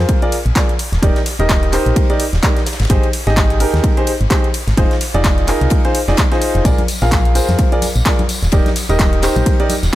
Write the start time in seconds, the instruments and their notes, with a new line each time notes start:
Already playing: grand piano F4 G#4 A#4 C5
0.09 kick, closed hi-hat, ride
0.22 grand piano F4 G#4 A#4 D5, closed hi-hat
0.32 open hi-hat, ride
0.46 fm bass A#1, closed hi-hat
0.56 grand piano F4 G#4 A#4 D5, kick, snare, clap, closed hi-hat, ride
0.69 closed hi-hat
0.79 open hi-hat, ride
0.92 fm bass D#1, snare, closed hi-hat
1.03 fm bass D#1, grand piano D#4 G4 A#4 D5, kick, closed hi-hat, ride
1.15 snare, closed hi-hat
1.26 snare, open hi-hat, ride
1.39 fm bass D#1, grand piano D#4 G4 A#4 D#5, closed hi-hat
1.49 kick, snare, clap, closed hi-hat, ride
1.63 closed hi-hat
1.73 grand piano D#4 G4 A#4 C5, clap, open hi-hat, ride
1.86 fm bass A#1, closed hi-hat
1.96 kick, closed hi-hat, ride
2.10 grand piano D#4 G4 A#4 D5, closed hi-hat
2.20 open hi-hat, ride
2.33 fm bass D#1, snare, closed hi-hat
2.43 grand piano D#4 G4 A#4 D5, kick, snare, clap, closed hi-hat, ride
2.57 snare, closed hi-hat
2.66 snare, open hi-hat, ride
2.73 snare, ride
2.79 fm bass G#1, snare, closed hi-hat, ride
2.85 snare, ride
2.90 fm bass G#1, grand piano D#4 G4 G#4 C5, kick, closed hi-hat, ride
3.03 closed hi-hat, ride
3.13 open hi-hat, ride
3.27 fm bass G#1, grand piano D#4 G4 G#4 D#5, snare, closed hi-hat
3.37 kick, snare, clap, closed hi-hat, ride
3.50 closed hi-hat
3.60 grand piano D#4 G4 G#4 A#4, open hi-hat, ride
3.74 fm bass D#2, snare, closed hi-hat
3.84 kick, closed hi-hat, ride
3.97 grand piano D#4 G4 G#4 C5, closed hi-hat
4.07 open hi-hat, ride
4.21 fm bass G#1, closed hi-hat
4.30 grand piano D#4 G4 G#4 C5, kick, snare, clap, closed hi-hat, ride
4.44 closed hi-hat
4.54 open hi-hat, ride
4.68 fm bass G#1, snare, closed hi-hat
4.77 fm bass F1, grand piano D#4 F4 G#4 C5, kick, closed hi-hat, ride
4.91 snare, closed hi-hat
5.01 snare, open hi-hat, ride
5.14 fm bass F1, grand piano D#4 F4 G#4 D5, closed hi-hat
5.24 kick, snare, clap, closed hi-hat, ride
5.38 closed hi-hat
5.48 grand piano D#4 F4 G#4 A#4, clap, open hi-hat, ride
5.61 fm bass C2, closed hi-hat
5.70 kick, closed hi-hat, ride
5.85 grand piano D#4 F4 G#4 C5, closed hi-hat
5.94 open hi-hat, ride
6.08 fm bass F1, grand piano D#4 F4 G#4 D5, snare, closed hi-hat
6.17 kick, snare, clap, closed hi-hat, ride
6.32 grand piano D#4 F4 G#4 C5, snare, closed hi-hat
6.42 open hi-hat, ride
6.55 fm bass F1, closed hi-hat
6.65 fm bass A#1, grand piano F4 G#4 A#4 D5, kick, closed hi-hat, ride, tambourine
6.78 closed hi-hat, ride, high conga
6.88 open hi-hat, ride, tambourine
7.01 fm bass A#1, grand piano F4 G#4 A#4 F5, snare, closed hi-hat, tambourine
7.11 kick, snare, clap, closed hi-hat, ride, tambourine, high conga
7.25 closed hi-hat
7.35 grand piano F4 G#4 A#4 C5, open hi-hat, ride, tambourine
7.48 fm bass F2, snare, closed hi-hat, tambourine, high conga
7.59 kick, closed hi-hat, ride, tambourine
7.72 grand piano F4 G#4 A#4 D5, closed hi-hat
7.82 open hi-hat, ride, tambourine, high conga
7.95 fm bass A#1, closed hi-hat, tambourine
8.05 grand piano F4 G#4 A#4 D5, kick, snare, clap, closed hi-hat, ride, tambourine
8.19 closed hi-hat, high conga
8.29 open hi-hat, ride, tambourine
8.43 fm bass D#1, snare, closed hi-hat, tambourine
8.52 fm bass D#1, grand piano D#4 G4 A#4 D5, kick, closed hi-hat, ride, tambourine
8.66 snare, closed hi-hat, high conga
8.76 snare, open hi-hat, ride, tambourine
8.89 fm bass D#1, grand piano D#4 G4 A#4 D#5, closed hi-hat, tambourine
8.99 kick, snare, clap, closed hi-hat, ride, tambourine, high conga
9.13 closed hi-hat
9.23 grand piano D#4 G4 A#4 C5, clap, open hi-hat, ride, tambourine
9.36 fm bass A#1, closed hi-hat, tambourine, high conga
9.46 kick, closed hi-hat, ride, tambourine
9.60 grand piano D#4 G4 A#4 D5, closed hi-hat
9.69 open hi-hat, ride, tambourine, high conga
9.83 fm bass D#1, snare, closed hi-hat, tambourine